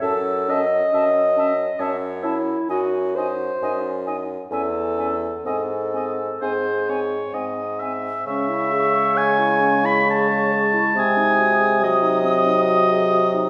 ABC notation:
X:1
M:3/4
L:1/16
Q:1/4=67
K:C#m
V:1 name="Flute"
a2 a2 a2 a2 a2 a2 | g2 g2 g2 g2 g2 g2 | g2 g2 g2 g2 g2 g2 | c'12 |
d'12 |]
V:2 name="Oboe"
e2 e2 e2 e2 e2 e2 | d2 d2 d2 d2 e2 e2 | d2 d2 ^B2 c2 d2 e2 | e4 g3 b a4 |
g4 d8 |]
V:3 name="Clarinet"
A2 d6 c2 E2 | F2 ^B4 z2 A4 | A4 G4 z4 | C E G c G E C E G c G E |
^B, D F G F D B, D F G F D |]
V:4 name="French horn"
C2 C2 C2 C2 C2 C2 | D2 D2 D2 D2 C2 C2 | ^B,2 B,2 B,2 B,2 B,2 B,2 | G,12- |
G,4 F,8 |]
V:5 name="Bassoon" clef=bass
F,,4 F,,4 F,,4 | F,,4 F,,4 E,,4 | G,,4 G,,4 G,,4 | C,12 |
^B,,12 |]